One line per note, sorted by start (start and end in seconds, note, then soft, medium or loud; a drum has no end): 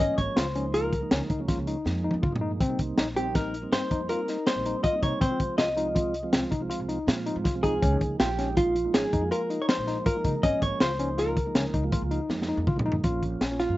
0.00 0.19 C#4 medium
0.00 0.16 D#5 loud
0.07 0.46 F3 medium
0.07 0.46 G#3 medium
0.07 0.46 A#3 medium
0.07 0.46 C#4 medium
0.18 0.26 G#1 medium
0.18 0.36 C#5 medium
0.18 kick medium
0.18 closed hi-hat medium
0.36 1.02 C#2 medium
0.36 0.46 F4 medium
0.36 0.74 C5 medium
0.36 snare loud
0.36 closed hi-hat medium
0.55 0.93 F3 medium
0.55 0.93 G#3 medium
0.55 0.93 A#3 medium
0.55 0.65 C#4 medium
0.55 0.94 D#4 medium
0.55 closed hi-hat medium
0.74 0.93 F4 medium
0.74 1.82 A#4 medium
0.74 closed hi-hat medium
0.93 kick medium
0.93 closed hi-hat medium
1.01 1.32 F3 medium
1.01 1.32 G#3 medium
1.01 1.32 A#3 medium
1.01 1.32 D#4 medium
1.11 1.19 C#2 medium
1.11 1.21 C#4 medium
1.11 snare loud
1.11 closed hi-hat medium
1.30 1.46 C#2 medium
1.30 1.40 D#4 medium
1.30 kick medium
1.30 closed hi-hat medium
1.39 1.77 F3 medium
1.39 1.77 G#3 medium
1.39 1.77 A#3 medium
1.39 1.78 C#4 medium
1.48 1.58 F4 medium
1.48 kick loud
1.48 snare soft
1.48 closed hi-hat medium
1.58 1.74 C#2 medium
1.67 1.86 D#4 medium
1.67 closed hi-hat medium
1.85 2.10 F2 medium
1.85 2.23 F3 medium
1.85 2.23 G#3 medium
1.85 2.24 A#3 medium
1.85 2.24 D#4 medium
1.85 snare medium
2.04 2.14 D#4 medium
2.11 2.22 F2 medium
2.11 high tom medium
2.23 2.56 G2 medium
2.23 2.32 F4 medium
2.23 kick loud
2.23 mid tom medium
2.31 2.60 F3 medium
2.31 2.60 G#3 medium
2.31 2.60 A#3 medium
2.31 2.60 D#4 medium
2.36 mid tom medium
2.41 2.51 D#4 medium
2.60 2.77 C2 medium
2.60 2.79 C4 medium
2.60 kick loud
2.60 closed hi-hat medium
2.68 3.07 G3 medium
2.68 3.07 A#3 medium
2.68 3.07 C4 medium
2.68 3.08 D#4 medium
2.79 2.95 C2 medium
2.79 kick medium
2.79 closed hi-hat medium
2.98 3.63 A#1 medium
2.98 3.07 D#4 medium
2.98 snare loud
2.98 closed hi-hat medium
3.15 3.54 G3 medium
3.15 3.54 A#3 medium
3.15 3.54 C4 medium
3.15 3.26 C4 medium
3.15 3.54 D#4 medium
3.15 3.35 G4 medium
3.15 closed hi-hat medium
3.35 3.54 D#4 medium
3.35 3.73 A#4 medium
3.35 kick loud
3.35 snare soft
3.35 closed hi-hat medium
3.54 closed hi-hat medium
3.62 3.93 G3 medium
3.62 3.93 A#3 medium
3.62 3.93 C4 medium
3.62 3.93 D#4 medium
3.72 3.80 G2 medium
3.72 3.82 C4 medium
3.72 4.07 C5 medium
3.72 snare loud
3.72 closed hi-hat medium
3.91 4.07 F2 medium
3.91 4.00 D#4 medium
3.91 kick medium
3.91 closed hi-hat medium
4.00 4.38 G3 medium
4.00 4.38 A#3 medium
4.00 4.38 C4 medium
4.00 4.38 D#4 medium
4.09 4.19 F4 medium
4.09 4.48 A#4 medium
4.09 closed hi-hat medium
4.28 4.48 D#4 medium
4.28 snare soft
4.28 closed hi-hat medium
4.47 4.85 G3 medium
4.47 4.85 A#3 medium
4.47 4.85 C4 medium
4.47 4.85 D#4 medium
4.47 4.83 C5 medium
4.47 snare loud
4.47 closed hi-hat medium
4.56 4.72 A#1 medium
4.65 4.75 D#4 medium
4.65 closed hi-hat medium
4.84 4.94 F4 medium
4.84 5.03 D#5 medium
4.84 kick medium
4.84 closed hi-hat medium
4.92 5.21 G3 medium
4.92 5.21 A#3 medium
4.92 5.21 C4 medium
4.92 5.22 D#4 medium
5.03 5.11 C3 medium
5.03 5.12 D#4 medium
5.03 5.20 C#5 medium
5.03 kick medium
5.03 closed hi-hat medium
5.21 5.29 C2 loud
5.21 5.40 C4 medium
5.21 5.57 C5 medium
5.21 kick loud
5.21 closed hi-hat medium
5.30 5.68 F3 medium
5.30 5.68 G#3 medium
5.30 5.69 C4 medium
5.30 5.69 F4 medium
5.40 5.48 C2 medium
5.40 kick medium
5.40 closed hi-hat medium
5.58 6.24 C2 medium
5.58 5.68 F4 medium
5.58 6.29 D#5 medium
5.58 snare loud
5.58 closed hi-hat medium
5.76 6.14 F3 medium
5.76 6.15 G#3 medium
5.76 6.15 C4 medium
5.76 5.86 D#4 medium
5.76 6.15 F4 medium
5.76 closed hi-hat medium
5.95 6.14 F4 medium
5.95 kick loud
5.95 closed hi-hat medium
6.14 closed hi-hat medium
6.23 6.54 F3 medium
6.23 6.54 G#3 medium
6.23 6.54 C4 medium
6.23 6.54 F4 medium
6.33 6.41 C2 medium
6.33 6.42 C4 medium
6.33 snare loud
6.33 closed hi-hat medium
6.51 6.68 C2 medium
6.51 6.61 D#4 medium
6.51 kick medium
6.51 closed hi-hat medium
6.60 6.98 F3 medium
6.60 6.99 G#3 medium
6.60 6.99 C4 medium
6.60 6.99 F4 medium
6.70 6.79 F4 medium
6.70 closed hi-hat medium
6.80 6.96 C2 medium
6.88 7.07 D#4 medium
6.88 closed hi-hat medium
7.07 7.32 A#2 medium
7.07 7.45 F3 medium
7.07 7.45 G#3 medium
7.07 7.46 C4 medium
7.07 7.46 F4 medium
7.07 snare loud
7.07 closed hi-hat medium
7.26 7.36 D#4 medium
7.26 closed hi-hat medium
7.36 7.44 G#2 medium
7.44 7.78 C2 medium
7.44 7.54 F4 medium
7.44 kick loud
7.44 snare soft
7.44 closed hi-hat medium
7.54 7.82 F3 medium
7.54 7.82 G#3 medium
7.54 7.83 C4 medium
7.54 7.83 F4 medium
7.63 7.73 D#4 medium
7.63 8.15 G#4 medium
7.63 kick medium
7.63 closed hi-hat medium
7.82 7.99 C#2 loud
7.82 8.01 C#4 medium
7.82 kick loud
7.82 closed hi-hat medium
7.92 8.29 F3 medium
7.92 8.30 G#3 medium
7.92 8.30 A#3 medium
7.92 8.30 D#4 medium
8.01 8.17 C#2 medium
8.01 kick medium
8.01 closed hi-hat medium
8.20 8.85 A#1 medium
8.20 8.29 F4 medium
8.20 8.54 G4 medium
8.20 snare loud
8.20 closed hi-hat medium
8.38 8.76 F3 medium
8.38 8.76 G#3 medium
8.38 8.76 A#3 medium
8.38 8.48 C#4 medium
8.38 8.77 D#4 medium
8.38 snare soft
8.38 closed hi-hat medium
8.57 8.95 F4 medium
8.57 8.76 F4 medium
8.57 kick loud
8.57 closed hi-hat medium
8.76 closed hi-hat medium
8.84 9.15 F3 medium
8.84 9.15 G#3 medium
8.84 9.15 A#3 medium
8.84 9.16 D#4 medium
8.94 9.02 G#1 medium
8.94 9.04 C#4 medium
8.94 9.29 G#4 medium
8.94 snare loud
8.94 closed hi-hat medium
9.13 9.29 F2 medium
9.13 9.22 D#4 medium
9.13 kick medium
9.13 closed hi-hat medium
9.21 9.60 F3 medium
9.21 9.60 G#3 medium
9.21 9.60 A#3 medium
9.21 9.60 F4 medium
9.31 9.41 F4 medium
9.31 9.63 A#4 medium
9.31 closed hi-hat medium
9.50 9.69 D#4 medium
9.50 closed hi-hat medium
9.62 9.68 C#5 medium
9.68 10.06 F3 medium
9.68 10.06 G#3 medium
9.68 10.07 A#3 medium
9.68 10.07 D#4 medium
9.68 10.03 C5 medium
9.68 snare loud
9.68 closed hi-hat medium
9.78 9.94 A#1 medium
9.88 9.97 D#4 medium
9.88 snare soft
9.88 closed hi-hat medium
10.06 10.16 F4 medium
10.06 10.44 A#4 loud
10.06 kick loud
10.06 closed hi-hat medium
10.15 10.45 F3 medium
10.15 10.45 G#3 medium
10.15 10.46 A#3 medium
10.15 10.46 D#4 medium
10.24 10.33 C#3 medium
10.24 10.34 D#4 medium
10.24 kick medium
10.24 closed hi-hat medium
10.43 10.51 G#1 loud
10.43 10.62 C#4 medium
10.43 10.62 D#5 loud
10.43 kick loud
10.43 closed hi-hat medium
10.51 10.90 F3 medium
10.51 10.90 G#3 medium
10.51 10.90 A#3 medium
10.51 10.91 C#4 medium
10.62 10.70 G#1 medium
10.62 10.80 C#5 medium
10.62 kick medium
10.62 closed hi-hat medium
10.80 11.46 C#2 medium
10.80 10.90 F4 medium
10.80 11.19 C5 medium
10.80 snare loud
10.80 closed hi-hat medium
10.99 11.37 F3 medium
10.99 11.37 G#3 medium
10.99 11.37 A#3 medium
10.99 11.09 C#4 medium
10.99 11.37 D#4 medium
10.99 closed hi-hat medium
11.18 11.37 F4 medium
11.18 12.26 A#4 medium
11.18 snare soft
11.18 closed hi-hat medium
11.37 kick medium
11.37 closed hi-hat medium
11.46 11.76 F3 medium
11.46 11.76 G#3 medium
11.46 11.76 A#3 medium
11.46 11.77 D#4 medium
11.55 11.63 C#2 medium
11.55 11.64 C#4 medium
11.55 snare loud
11.55 closed hi-hat medium
11.74 11.90 C#2 medium
11.74 11.83 D#4 medium
11.74 kick medium
11.74 closed hi-hat medium
11.83 12.21 F3 medium
11.83 12.21 G#3 medium
11.83 12.21 A#3 medium
11.83 12.21 F4 medium
11.92 12.02 F4 medium
11.92 kick loud
11.92 closed hi-hat medium
12.02 12.18 C#2 medium
12.11 12.30 D#4 medium
12.11 closed hi-hat medium
12.29 12.54 F2 medium
12.29 12.67 F3 medium
12.29 12.67 G#3 medium
12.29 12.68 A#3 medium
12.29 12.68 D#4 medium
12.29 snare medium
12.42 snare medium
12.49 12.58 D#4 medium
12.57 12.66 F2 medium
12.67 12.84 C2 medium
12.67 12.77 F4 medium
12.67 kick loud
12.67 mid tom medium
12.76 13.02 F3 medium
12.76 13.04 G#3 medium
12.76 13.03 A#3 medium
12.76 13.05 D#4 loud
12.76 mid tom loud
12.85 13.02 A#1 medium
12.85 12.95 D#4 medium
12.92 floor tom medium
13.04 13.37 A#1 medium
13.04 13.42 F3 medium
13.04 13.42 A#3 medium
13.04 13.42 C#4 medium
13.04 13.23 F4 medium
13.04 13.42 F4 medium
13.04 kick loud
13.04 closed hi-hat medium
13.23 kick medium
13.23 closed hi-hat medium
13.41 13.66 A#1 medium
13.41 13.60 C#4 medium
13.41 snare loud
13.41 closed hi-hat medium
13.50 13.78 F3 medium
13.50 13.78 A#3 medium
13.50 13.78 C#4 medium
13.50 13.78 F4 medium
13.60 13.77 F4 medium
13.60 snare soft
13.60 closed hi-hat medium
13.69 13.78 G2 medium